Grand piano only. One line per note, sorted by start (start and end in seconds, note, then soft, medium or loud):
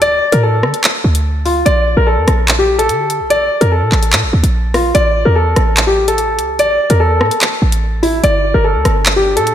0.02 0.31 D5 loud
0.32 0.41 A#4 medium
0.43 1.42 A4 medium
1.45 1.63 F4 medium
1.66 1.95 D5 loud
1.97 2.06 A#4 medium
2.07 2.55 A4 medium
2.59 2.76 G4 medium
2.79 3.27 A4 medium
3.30 3.59 D5 loud
3.61 3.70 A#4 medium
3.72 4.70 A4 medium
4.75 4.92 F4 medium
4.95 5.24 D5 loud
5.25 5.34 A#4 medium
5.36 5.84 A4 medium
5.87 6.04 G4 medium
6.08 6.56 A4 medium
6.59 6.88 D5 loud
6.90 6.99 A#4 medium
7.00 7.99 A4 medium
8.03 8.20 E4 medium
8.24 8.52 D5 loud
8.54 8.63 A#4 medium
8.64 9.13 A4 medium
9.16 9.33 G4 medium
9.36 9.55 A4 medium